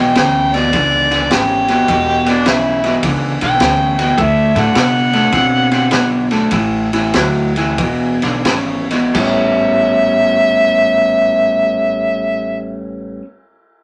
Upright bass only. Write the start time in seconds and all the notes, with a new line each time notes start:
Already playing: B1
0.17 D2
0.73 C#2
1.31 G#1
1.89 E1
2.46 B1
3.03 C#2
3.42 B1
3.61 D2
4.18 D2
4.56 A2
4.76 C3
5.33 B2
5.92 B1
6.52 A1
7.15 D2
7.78 E1
8.23 B1
8.45 G#1
9.15 A1